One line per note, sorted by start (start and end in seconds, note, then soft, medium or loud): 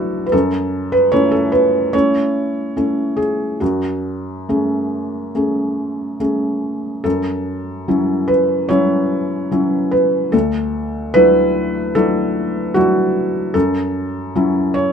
0.00 0.35 F#3 soft
0.00 0.35 D4 soft
0.00 0.35 E4 soft
0.00 0.25 F#4 medium
0.00 0.32 A4 medium
0.26 0.33 B4 medium
0.32 1.10 F#2 medium
0.32 0.92 A4 medium
0.92 1.12 B4 medium
1.12 1.89 A3 soft
1.12 1.89 C#4 soft
1.12 1.90 E4 soft
1.12 1.32 C#5 medium
1.32 1.52 A4 medium
1.52 1.93 B4 medium
1.93 2.72 A3 soft
1.93 2.72 C#4 soft
1.93 2.73 E4 soft
1.93 3.18 C#5 medium
2.77 3.58 A3 soft
2.77 3.57 C#4 soft
2.77 3.58 E4 soft
3.17 3.60 G#4 medium
3.60 4.45 F#2 soft
3.60 6.19 F#4 soft
4.49 5.31 A3 soft
4.49 5.31 C#4 soft
4.49 5.31 G#4 soft
5.35 6.16 A3 soft
5.35 6.16 C#4 soft
5.35 6.17 G#4 soft
6.20 7.01 A3 soft
6.20 7.01 C#4 soft
6.20 7.01 G#4 soft
7.04 7.85 F#2 medium
7.04 8.28 A4 medium
7.88 8.66 F#3 soft
7.88 8.66 C#4 soft
7.88 8.66 E4 soft
8.28 8.69 B4 medium
8.69 9.48 F#3 soft
8.69 9.48 C#4 soft
8.69 9.48 E4 soft
8.69 9.92 C#5 medium
9.51 10.29 F#3 soft
9.51 10.29 C#4 soft
9.51 10.29 E4 soft
9.91 10.32 B4 medium
10.32 11.12 D2 medium
10.32 11.14 A4 medium
11.14 11.92 F#3 medium
11.14 11.92 D4 soft
11.14 11.92 E4 medium
11.14 11.95 B4 medium
11.95 12.72 F#3 soft
11.95 12.72 D4 soft
11.95 12.72 E4 soft
11.95 12.75 A4 medium
12.74 13.51 F#3 soft
12.74 13.51 D4 soft
12.74 13.51 E4 soft
12.74 13.54 F#4 medium
13.54 14.32 F#2 medium
13.54 14.74 A4 medium
14.35 14.92 F#3 soft
14.35 14.92 C#4 soft
14.35 14.92 E4 medium
14.74 14.92 C#5 medium